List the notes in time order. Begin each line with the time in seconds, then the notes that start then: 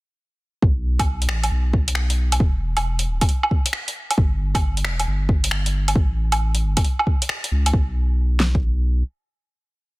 0.62 B1, kick
0.99 kick, closed hi-hat, low woodblock
1.22 closed hi-hat
1.29 A1, finger snap
1.44 closed hi-hat, low woodblock
1.51 B1
1.73 kick
1.88 closed hi-hat
1.95 finger snap
2.10 closed hi-hat
2.32 closed hi-hat, low woodblock
2.40 E1, kick
2.77 closed hi-hat, low woodblock
2.99 closed hi-hat
3.07 D1
3.21 kick, closed hi-hat, low woodblock
3.29 closed hi-hat
3.43 low woodblock
3.51 kick
3.66 closed hi-hat
3.73 finger snap
3.88 closed hi-hat
4.11 closed hi-hat, low woodblock
4.18 G1, kick
4.55 kick, closed hi-hat, low woodblock
4.77 closed hi-hat
4.84 E1, finger snap
5.00 closed hi-hat, low woodblock
5.07 G1
5.29 kick
5.44 closed hi-hat
5.51 finger snap
5.66 closed hi-hat
5.88 closed hi-hat, low woodblock
5.95 A1, kick
6.32 closed hi-hat, low woodblock
6.55 closed hi-hat
6.63 G1
6.77 kick, closed hi-hat, low woodblock
6.84 closed hi-hat
6.99 low woodblock
7.07 kick
7.22 closed hi-hat
7.29 finger snap
7.44 closed hi-hat
7.51 C#2
7.66 closed hi-hat, low woodblock
7.73 B1, kick
8.40 snare
8.55 kick